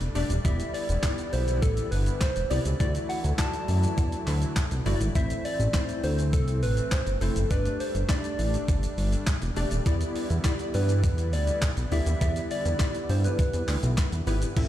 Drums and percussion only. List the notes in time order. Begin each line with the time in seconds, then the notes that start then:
0.01 closed hi-hat, shaker
0.15 open hi-hat, shaker
0.30 closed hi-hat, shaker
0.45 kick, closed hi-hat, shaker
0.60 closed hi-hat, shaker
0.74 open hi-hat, shaker
0.89 closed hi-hat, shaker
1.03 kick, snare, clap, closed hi-hat, shaker
1.18 closed hi-hat, shaker
1.33 open hi-hat, shaker
1.48 closed hi-hat, shaker
1.62 kick, closed hi-hat, shaker
1.77 closed hi-hat, shaker
1.92 open hi-hat, shaker
2.06 closed hi-hat, shaker
2.21 kick, snare, clap, closed hi-hat, shaker
2.36 closed hi-hat, shaker
2.51 open hi-hat, shaker
2.65 closed hi-hat, shaker
2.80 kick, closed hi-hat, shaker
2.95 closed hi-hat, shaker
3.10 open hi-hat, shaker
3.24 closed hi-hat, shaker
3.38 kick, snare, clap, closed hi-hat, shaker
3.54 closed hi-hat, shaker
3.68 open hi-hat, shaker
3.83 closed hi-hat, shaker
3.98 kick, closed hi-hat, shaker
4.12 closed hi-hat, shaker
4.27 clap, open hi-hat, shaker
4.42 closed hi-hat, shaker
4.56 kick, snare, clap, closed hi-hat, shaker
4.71 closed hi-hat, shaker
4.86 open hi-hat, shaker
5.01 closed hi-hat, shaker
5.15 kick, closed hi-hat, shaker
5.30 closed hi-hat, shaker
5.45 open hi-hat, shaker
5.60 closed hi-hat, shaker
5.73 kick, snare, clap, closed hi-hat, shaker
5.89 closed hi-hat, shaker
6.04 open hi-hat, shaker
6.19 closed hi-hat, shaker
6.33 kick, closed hi-hat, shaker
6.48 closed hi-hat, shaker
6.63 open hi-hat, shaker
6.77 closed hi-hat, shaker
6.91 kick, snare, clap, closed hi-hat, shaker
7.07 closed hi-hat, shaker
7.21 open hi-hat, shaker
7.36 closed hi-hat, shaker
7.51 kick, closed hi-hat, shaker
7.65 closed hi-hat, shaker
7.80 open hi-hat, shaker
7.95 closed hi-hat, shaker
8.09 kick, snare, clap, closed hi-hat, shaker
8.24 closed hi-hat, shaker
8.39 open hi-hat, shaker
8.54 closed hi-hat, shaker
8.68 kick, closed hi-hat, shaker
8.83 closed hi-hat, shaker
8.98 open hi-hat, shaker
9.12 closed hi-hat, shaker
9.26 kick, snare, clap, closed hi-hat, shaker
9.42 closed hi-hat, shaker
9.56 open hi-hat, shaker
9.71 closed hi-hat, shaker
9.86 kick, closed hi-hat, shaker
10.01 closed hi-hat, shaker
10.16 open hi-hat, shaker
10.30 closed hi-hat, shaker
10.44 kick, snare, clap, closed hi-hat, shaker
10.59 closed hi-hat, shaker
10.74 open hi-hat, shaker
10.89 closed hi-hat, shaker
11.04 kick, closed hi-hat, shaker
11.18 closed hi-hat, shaker
11.33 open hi-hat, shaker
11.47 closed hi-hat, shaker
11.62 kick, snare, clap, closed hi-hat, shaker
11.77 closed hi-hat, shaker
11.92 open hi-hat, shaker
12.06 closed hi-hat, shaker
12.21 kick, closed hi-hat, shaker
12.36 closed hi-hat, shaker
12.51 open hi-hat, shaker
12.65 closed hi-hat, shaker
12.79 kick, snare, clap, closed hi-hat, shaker
12.95 closed hi-hat, shaker
13.09 open hi-hat, shaker
13.24 closed hi-hat, shaker
13.39 kick, closed hi-hat, shaker
13.53 closed hi-hat, shaker
13.68 clap, open hi-hat, shaker
13.83 closed hi-hat, shaker
13.97 kick, snare, clap, closed hi-hat, shaker
14.12 closed hi-hat, shaker
14.27 open hi-hat, shaker
14.42 closed hi-hat, shaker
14.57 kick, closed hi-hat, crash